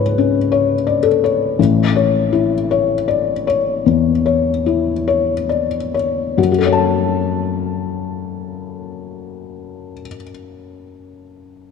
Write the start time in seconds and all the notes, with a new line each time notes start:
Already playing: G#2 C#4 G#4 B4 C#5 D5
0.18 C#4
0.52 C#5
0.87 D5
1.03 A4
1.24 C#5
1.59 A1
1.96 C#5
2.33 E4
2.71 C#5
3.08 D5
3.47 C#5
3.86 E2
4.26 C#5
4.66 E4
5.08 C#5
5.49 D5
5.94 C#5
6.37 F#2 F#4
6.44 F#3
6.52 F#4
6.58 A4
6.66 C#5
6.73 A5